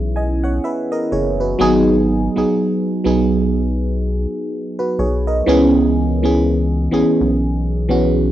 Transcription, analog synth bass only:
Already playing: B1
1.12 F#1
1.60 G#1
2.37 B1
3.06 B1
4.99 B1
5.47 C#2
6.93 B1
7.21 B1

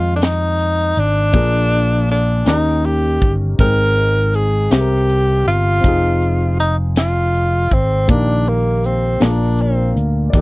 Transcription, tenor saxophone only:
Already playing: F4
0.16 D4
0.24 D#4
0.99 D4
2.11 D4
2.48 D#4
2.85 G4
3.60 A#4
4.35 G#4
4.72 G4
5.48 F4
6.60 D#4
6.98 F4
7.74 C4
8.11 D4
8.49 A#3
8.86 C4
9.23 D4
9.62 C4
10.35 D#4

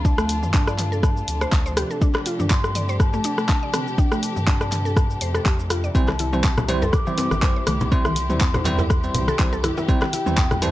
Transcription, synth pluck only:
0.05 D4
0.18 A3
0.54 D4
0.67 D5
0.92 A4
1.41 C5
1.66 C5
1.77 G4
1.91 A4
2.02 D4
2.26 F4
2.40 D4
2.51 D4
2.76 D5
2.89 C5
3.14 A3
3.25 D4
3.38 A3
3.49 D4
3.63 D5
3.74 C4
3.98 D4
4.12 A3
4.47 D4
4.61 D5
4.85 A4
5.22 C5
5.35 A4
5.46 G4
5.71 F4
5.84 D5
5.95 C4
6.20 E4
6.33 C4
6.44 C4
6.69 C5
6.82 A4
7.07 E3
7.18 C4
7.32 E3
7.43 C4
7.56 C5
7.67 A3
7.92 C4
8.05 E3
8.41 C4
8.55 C5
8.79 E4
9.28 A4
9.53 A4
9.64 E4
9.78 E4
9.89 C4
10.13 E4
10.27 C4
10.38 C4
10.62 C5

